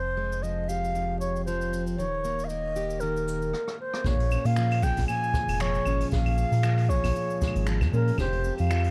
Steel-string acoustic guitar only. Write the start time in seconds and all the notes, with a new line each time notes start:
Already playing: F2
0.17 G#3
0.43 F3
0.69 G4
0.95 F2
1.47 F3
1.73 C4
1.98 D#3
2.25 A#3
2.50 A#3
2.76 G4
3.02 D#3
4.06 A#2 G#4
4.32 C#4
4.58 F3
4.84 G#4
5.09 A#2
5.35 G#3
5.61 F3
5.87 C#4
6.13 A#2 G#4
6.39 C#4
6.64 F3
6.89 G#4
7.16 A#2
7.42 G#3
7.68 F3
7.94 C#4
8.20 F2 G4
8.46 C4
8.71 F3